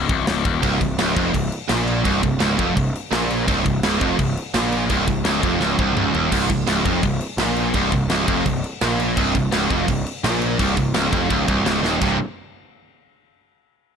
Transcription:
0.09 0.26 C1 medium
0.09 0.26 C2 loud
0.09 kick loud
0.09 crash medium
0.27 0.44 C#1 medium
0.27 0.44 C#2 loud
0.27 snare loud
0.27 crash medium
0.45 0.62 D#1 medium
0.45 0.62 D#2 loud
0.45 kick loud
0.45 crash medium
0.62 0.80 C1 loud
0.62 0.79 C2 loud
0.62 kick loud
0.62 crash medium
0.80 0.97 C1 medium
0.80 0.95 C2 medium
0.80 kick medium
0.80 crash medium
0.99 1.16 C#1 medium
0.99 1.15 C#2 loud
0.99 snare loud
0.99 crash medium
1.16 1.33 F1 medium
1.16 1.33 F2 medium
1.16 kick loud
1.16 crash medium
1.34 1.51 C1 medium
1.34 1.49 C2 medium
1.34 kick loud
1.34 crash medium
1.52 crash medium
1.69 2.03 A#1 medium
1.69 2.04 A#2 loud
1.69 snare loud
1.69 crash medium
1.87 crash medium
2.05 2.22 C1 loud
2.05 2.22 C2 loud
2.05 kick loud
2.05 crash medium
2.23 2.39 C1 medium
2.23 2.37 C2 medium
2.23 kick medium
2.23 crash medium
2.40 2.57 C#1 loud
2.40 2.58 C#2 loud
2.40 snare loud
2.40 crash medium
2.58 2.76 F1 medium
2.58 2.76 F2 loud
2.58 kick loud
2.58 crash medium
2.77 2.93 C1 medium
2.77 2.91 C2 medium
2.77 kick medium
2.77 crash medium
2.95 crash medium
3.12 3.45 A#1 loud
3.12 3.47 A#2 loud
3.12 snare loud
3.12 crash medium
3.30 crash medium
3.47 3.64 C1 loud
3.47 3.64 C2 loud
3.47 kick loud
3.47 crash medium
3.66 3.82 C1 medium
3.66 3.80 C2 medium
3.66 kick medium
3.66 crash medium
3.83 4.00 C#1 loud
3.83 4.01 C#2 loud
3.83 snare loud
3.83 crash medium
4.01 4.18 F1 loud
4.01 4.18 F2 loud
4.01 kick loud
4.01 crash medium
4.19 4.36 C1 medium
4.19 4.33 C2 medium
4.19 kick medium
4.19 crash medium
4.37 crash medium
4.54 4.88 A#1 loud
4.54 4.90 A#2 loud
4.54 snare loud
4.54 crash medium
4.72 crash medium
4.89 5.07 C1 loud
4.89 5.06 C2 loud
4.89 kick loud
4.89 crash medium
5.07 5.24 C1 medium
5.07 5.22 C2 medium
5.07 kick medium
5.07 crash medium
5.24 5.42 C#1 loud
5.24 5.41 C#2 loud
5.24 snare loud
5.24 crash medium
5.41 5.60 F1 medium
5.41 5.60 F2 medium
5.41 kick loud
5.41 crash medium
5.60 5.77 C#1 loud
5.60 5.78 C#2 loud
5.60 snare medium
5.78 5.95 C1 medium
5.78 5.96 C2 loud
5.78 kick loud
5.96 6.13 C#1 loud
5.96 6.14 C#2 loud
5.96 mid tom loud
6.13 6.30 D#1 medium
6.13 6.32 D#2 loud
6.13 floor tom medium
6.32 6.49 C1 loud
6.32 6.49 C2 loud
6.32 kick loud
6.32 crash loud
6.32 crash medium
6.49 6.66 C1 medium
6.49 6.64 C2 medium
6.49 kick medium
6.49 crash medium
6.67 6.84 C#1 loud
6.67 6.85 C#2 loud
6.67 snare loud
6.67 crash medium
6.85 7.02 F1 medium
6.85 7.03 F2 medium
6.85 kick loud
6.85 crash medium
7.03 7.20 C1 medium
7.03 7.19 C2 medium
7.03 kick medium
7.03 crash medium
7.21 crash medium
7.37 7.71 A#1 loud
7.37 7.75 A#2 loud
7.37 snare loud
7.37 crash medium
7.56 crash medium
7.74 7.91 C1 loud
7.74 7.92 C2 loud
7.74 kick loud
7.74 crash medium
7.92 8.09 C1 medium
7.92 8.07 C2 medium
7.92 kick medium
7.92 crash medium
8.10 8.27 C#1 loud
8.10 8.26 C#2 loud
8.10 snare loud
8.10 crash medium
8.27 8.44 F1 medium
8.27 8.45 F2 loud
8.27 kick loud
8.27 crash medium
8.46 8.63 C1 medium
8.46 8.60 C2 medium
8.46 kick medium
8.46 crash medium
8.64 crash medium
8.81 9.15 A#1 loud
8.81 9.17 A#2 loud
8.81 snare loud
8.81 crash medium
8.99 crash medium
9.17 9.34 C1 loud
9.17 9.34 C2 loud
9.17 kick loud
9.17 crash medium
9.35 9.51 C1 medium
9.35 9.49 C2 medium
9.35 kick medium
9.35 crash medium
9.52 9.69 C#1 medium
9.52 9.69 C#2 loud
9.52 snare loud
9.52 crash medium
9.70 9.87 F1 medium
9.70 9.87 F2 loud
9.70 kick loud
9.70 crash medium
9.88 10.05 C1 medium
9.88 10.02 C2 medium
9.88 kick loud
9.88 crash medium
10.06 crash medium
10.24 10.57 A#1 loud
10.24 10.59 A#2 loud
10.24 snare loud
10.24 crash loud
10.42 crash medium
10.59 10.76 C1 loud
10.59 10.75 C2 loud
10.59 kick loud
10.59 crash medium
10.76 10.93 C1 medium
10.76 10.91 C2 medium
10.76 kick loud
10.76 crash medium
10.94 11.11 C#1 loud
10.94 11.10 C#2 loud
10.94 snare loud
10.94 crash medium
11.11 11.29 F1 loud
11.11 11.29 F2 medium
11.11 kick loud
11.11 crash medium
11.29 11.47 C#1 medium
11.29 11.47 C#2 loud
11.29 kick loud
11.29 crash medium
11.47 11.64 C1 medium
11.47 11.64 C2 loud
11.47 kick loud
11.47 crash medium
11.64 11.82 C#1 loud
11.64 11.82 C#2 loud
11.64 snare loud
11.64 crash medium
11.82 12.00 D#1 medium
11.82 12.00 D#2 loud
11.82 snare medium
12.01 12.18 C1 loud
12.01 12.15 C2 medium
12.01 12.16 G2 medium
12.01 12.16 C3 loud
12.01 kick loud
12.01 crash loud

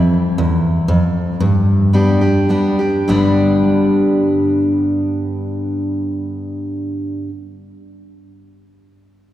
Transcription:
0.00 0.34 F2 medium
0.00 0.38 F2 medium
0.38 0.86 E2 medium
0.38 0.81 E2 medium
0.88 1.38 F2 medium
0.88 1.32 F2 medium
1.40 2.45 G2 medium
1.40 2.93 G2 medium
1.93 2.20 G3 medium
1.93 2.20 B3 medium
1.93 2.21 D4 medium
1.93 2.20 G4 medium
2.21 2.49 D4 soft
2.21 2.49 G4 medium
2.49 2.78 G3 medium
2.49 2.78 B3 medium
2.49 2.78 D4 medium
2.49 2.78 G4 medium
2.79 3.08 D4 soft
2.79 3.08 G4 medium
3.08 7.25 G1 medium
3.08 7.27 G2 medium
3.08 7.28 D3 medium
3.08 7.28 G3 medium
3.08 7.28 B3 medium
3.08 7.29 D4 medium
3.08 7.29 G4 medium

